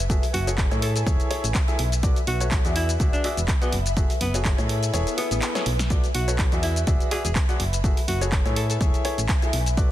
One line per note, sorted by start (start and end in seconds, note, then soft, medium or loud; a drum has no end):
0.00 0.19 F#1 medium
0.00 9.92 B4 medium
0.00 9.92 E5 medium
0.00 2.03 G#5 medium
0.10 0.22 F#4 medium
0.10 0.22 G#4 medium
0.10 0.22 A4 medium
0.10 0.22 E5 medium
0.10 kick loud
0.10 closed hi-hat medium
0.10 shaker medium
0.23 open hi-hat medium
0.23 shaker soft
0.34 0.68 F#1 loud
0.34 0.52 F#4 medium
0.34 open hi-hat loud
0.47 0.68 F#4 medium
0.47 0.68 G#4 medium
0.47 0.68 A4 medium
0.47 0.68 C#5 medium
0.47 closed hi-hat soft
0.47 shaker medium
0.58 kick loud
0.58 clap loud
0.58 closed hi-hat medium
0.58 shaker medium
0.71 1.03 A2 medium
0.71 1.04 E4 medium
0.71 1.04 G#4 medium
0.71 1.04 A4 medium
0.71 1.04 C#5 medium
0.71 closed hi-hat soft
0.71 shaker soft
0.82 0.91 A4 medium
0.82 open hi-hat loud
0.96 1.03 A4 medium
0.96 closed hi-hat soft
0.96 shaker medium
1.06 1.17 E1 loud
1.06 1.28 E4 medium
1.06 1.28 G#4 medium
1.06 1.28 A4 medium
1.06 1.28 C#5 loud
1.06 kick loud
1.06 closed hi-hat medium
1.06 shaker medium
1.20 closed hi-hat soft
1.20 shaker soft
1.31 1.43 E4 loud
1.31 1.43 G#4 medium
1.31 1.43 A4 medium
1.31 1.43 C#5 loud
1.31 open hi-hat loud
1.44 1.53 A1 medium
1.44 closed hi-hat soft
1.44 shaker medium
1.54 kick loud
1.54 clap loud
1.54 closed hi-hat medium
1.54 shaker medium
1.68 1.78 E4 medium
1.68 1.78 G#4 medium
1.68 1.78 A4 medium
1.68 1.78 E5 medium
1.68 closed hi-hat soft
1.68 shaker soft
1.79 2.13 B1 medium
1.79 open hi-hat loud
1.92 closed hi-hat soft
1.92 shaker medium
2.03 2.16 F#4 medium
2.03 2.16 A4 medium
2.03 2.16 B4 medium
2.03 2.16 D5 medium
2.03 kick loud
2.03 closed hi-hat medium
2.03 shaker medium
2.16 closed hi-hat soft
2.16 shaker soft
2.27 2.61 B1 loud
2.27 2.45 F#4 loud
2.27 open hi-hat loud
2.41 2.62 F#4 medium
2.41 2.62 A4 medium
2.41 2.62 B4 medium
2.41 2.62 C#5 medium
2.41 closed hi-hat soft
2.41 shaker medium
2.51 kick loud
2.51 clap loud
2.51 closed hi-hat medium
2.51 shaker medium
2.65 2.97 E2 medium
2.65 2.97 F#4 medium
2.65 2.97 G#4 medium
2.65 2.97 D5 medium
2.65 2.97 E5 medium
2.65 closed hi-hat soft
2.65 shaker soft
2.76 2.94 E4 medium
2.76 open hi-hat loud
2.89 closed hi-hat soft
2.89 shaker medium
3.00 3.11 D1 loud
3.00 3.22 F#4 medium
3.00 3.22 G#4 medium
3.00 3.22 D5 medium
3.00 3.22 E5 loud
3.00 kick loud
3.00 closed hi-hat medium
3.00 shaker medium
3.13 3.30 D4 medium
3.13 closed hi-hat soft
3.13 shaker soft
3.24 3.37 F#4 loud
3.24 3.37 G#4 medium
3.24 3.37 D5 medium
3.24 3.37 E5 loud
3.24 open hi-hat loud
3.31 5.90 G#5 medium
3.37 3.46 E1 medium
3.37 closed hi-hat soft
3.37 shaker medium
3.48 kick loud
3.48 clap loud
3.48 closed hi-hat medium
3.48 shaker medium
3.62 3.78 B3 medium
3.62 3.72 F#4 medium
3.62 3.72 G#4 medium
3.62 3.72 D5 medium
3.62 3.72 F#5 medium
3.62 closed hi-hat soft
3.62 shaker soft
3.73 4.06 F#1 medium
3.73 open hi-hat loud
3.86 closed hi-hat soft
3.86 shaker medium
3.97 4.09 F#4 medium
3.97 4.09 G#4 medium
3.97 4.09 A4 medium
3.97 4.09 E5 medium
3.97 kick loud
3.97 closed hi-hat medium
3.97 shaker medium
4.10 open hi-hat medium
4.10 shaker soft
4.21 4.55 F#1 loud
4.21 4.39 B3 medium
4.21 open hi-hat loud
4.34 4.55 F#4 medium
4.34 4.55 G#4 medium
4.34 4.55 A4 medium
4.34 4.55 C#5 medium
4.34 closed hi-hat soft
4.34 shaker medium
4.45 kick loud
4.45 clap loud
4.45 closed hi-hat medium
4.45 shaker medium
4.58 4.91 A2 medium
4.58 4.91 E4 medium
4.58 4.91 G#4 medium
4.58 4.91 A4 medium
4.58 4.91 C#5 medium
4.58 closed hi-hat soft
4.58 shaker soft
4.69 open hi-hat loud
4.83 closed hi-hat soft
4.83 shaker medium
4.93 5.05 E1 medium
4.93 5.15 E4 medium
4.93 5.15 G#4 medium
4.93 5.15 A4 medium
4.93 5.15 C#5 loud
4.93 closed hi-hat medium
4.93 swell medium
4.93 shaker medium
5.07 closed hi-hat soft
5.07 shaker soft
5.18 5.26 B3 medium
5.18 5.52 E4 medium
5.18 5.52 G#4 medium
5.18 5.52 A4 medium
5.18 5.52 E5 medium
5.18 open hi-hat loud
5.31 5.40 A1 medium
5.31 5.38 B3 medium
5.31 closed hi-hat soft
5.31 shaker medium
5.42 5.51 B3 medium
5.42 clap loud
5.42 closed hi-hat medium
5.42 shaker medium
5.55 5.62 B3 medium
5.55 5.65 E4 medium
5.55 5.65 G#4 medium
5.55 5.65 A4 medium
5.55 5.65 C#5 medium
5.55 snare medium
5.55 closed hi-hat soft
5.55 shaker soft
5.66 6.00 B1 loud
5.66 open hi-hat loud
5.79 snare loud
5.79 closed hi-hat soft
5.79 shaker medium
5.90 6.03 F#4 medium
5.90 6.03 A4 medium
5.90 6.03 B4 medium
5.90 6.03 D5 medium
5.90 kick loud
5.90 closed hi-hat medium
5.90 shaker medium
6.04 closed hi-hat soft
6.04 shaker soft
6.14 6.48 B1 loud
6.14 6.32 F#4 medium
6.14 open hi-hat loud
6.28 6.49 F#4 medium
6.28 6.49 A4 medium
6.28 6.49 B4 medium
6.28 6.49 C#5 medium
6.28 closed hi-hat soft
6.28 shaker medium
6.38 kick loud
6.38 clap loud
6.38 closed hi-hat medium
6.38 shaker medium
6.52 6.84 E2 medium
6.52 6.85 F#4 medium
6.52 6.85 G#4 medium
6.52 6.85 D5 medium
6.52 6.85 E5 medium
6.52 closed hi-hat soft
6.52 shaker soft
6.63 6.81 E4 medium
6.63 open hi-hat loud
6.76 closed hi-hat soft
6.76 shaker medium
6.87 6.98 D1 medium
6.87 7.09 F#4 medium
6.87 7.09 G#4 medium
6.87 7.09 D5 medium
6.87 7.09 E5 loud
6.87 kick loud
6.87 closed hi-hat medium
6.87 shaker medium
7.00 closed hi-hat soft
7.00 shaker soft
7.11 7.24 F#4 loud
7.11 7.20 G#4 medium
7.11 7.24 G#4 medium
7.11 7.24 D5 medium
7.11 7.24 E5 loud
7.11 open hi-hat loud
7.18 9.77 G#5 medium
7.25 7.34 E1 medium
7.25 7.32 G#4 medium
7.25 closed hi-hat soft
7.25 shaker medium
7.35 kick loud
7.35 clap loud
7.35 closed hi-hat medium
7.35 shaker medium
7.49 7.59 F#4 medium
7.49 7.59 G#4 medium
7.49 7.59 D5 medium
7.49 7.59 F#5 medium
7.49 closed hi-hat soft
7.49 shaker soft
7.60 7.94 F#1 medium
7.60 open hi-hat loud
7.73 closed hi-hat soft
7.73 shaker medium
7.84 7.96 F#4 medium
7.84 7.96 G#4 medium
7.84 7.96 A4 medium
7.84 7.96 E5 medium
7.84 kick loud
7.84 closed hi-hat medium
7.84 shaker medium
7.97 open hi-hat medium
7.97 shaker soft
8.08 8.42 F#1 loud
8.08 8.26 F#4 medium
8.08 open hi-hat loud
8.21 8.42 F#4 medium
8.21 8.42 G#4 medium
8.21 8.42 A4 medium
8.21 8.42 C#5 medium
8.21 closed hi-hat soft
8.21 shaker medium
8.32 kick loud
8.32 clap loud
8.32 closed hi-hat medium
8.32 shaker medium
8.46 8.78 A2 medium
8.46 8.78 E4 medium
8.46 8.78 G#4 medium
8.46 8.78 A4 medium
8.46 8.78 C#5 medium
8.46 closed hi-hat soft
8.46 shaker soft
8.56 8.65 A4 medium
8.56 open hi-hat loud
8.70 8.77 A4 medium
8.70 closed hi-hat soft
8.70 shaker medium
8.81 8.92 E1 loud
8.81 9.02 E4 medium
8.81 9.02 G#4 medium
8.81 9.02 A4 medium
8.81 9.02 C#5 loud
8.81 kick loud
8.81 closed hi-hat medium
8.81 shaker medium
8.94 closed hi-hat soft
8.94 shaker soft
9.05 9.17 E4 medium
9.05 9.17 G#4 medium
9.05 9.17 A4 medium
9.05 9.17 C#5 loud
9.05 open hi-hat loud
9.18 9.27 A1 medium
9.18 closed hi-hat soft
9.18 shaker medium
9.29 kick loud
9.29 clap loud
9.29 closed hi-hat medium
9.29 shaker medium
9.42 9.52 E4 medium
9.42 9.52 G#4 medium
9.42 9.52 A4 medium
9.42 9.52 E5 medium
9.42 closed hi-hat soft
9.42 shaker soft
9.53 9.87 B1 medium
9.53 open hi-hat loud
9.66 closed hi-hat soft
9.66 shaker medium
9.77 9.90 F#4 medium
9.77 9.90 A4 medium
9.77 9.90 B4 medium
9.77 9.90 D5 medium
9.77 kick loud
9.77 closed hi-hat medium
9.77 shaker medium